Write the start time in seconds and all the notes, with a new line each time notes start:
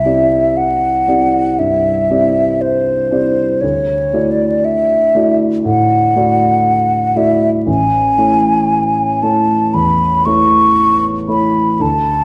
Already playing: C2 E5
0.05 C4 E4 G4 D5
0.57 F#5
1.08 C4 E4 G4 D5
1.59 G2 E5
2.10 C4 E4 G4 D5
2.61 C5
3.11 C4 E4 G4 D5
3.61 D2 C#5
4.13 A3 E4 F#4 D5
4.31 D5
4.65 E5
5.15 A3 E4 F#4 D5
5.65 A2 F#5
6.16 A3 E4 F#4 D5
7.16 A3 E4 F#4 D5 E5
7.67 A1 G#5
8.18 A3 E4 C#5
9.22 A3 E4 C#5 A5
9.74 E2 B5
10.26 A3 E4 C#5 C#6
11.28 A3 E4 C#5 B5
11.80 D2 A5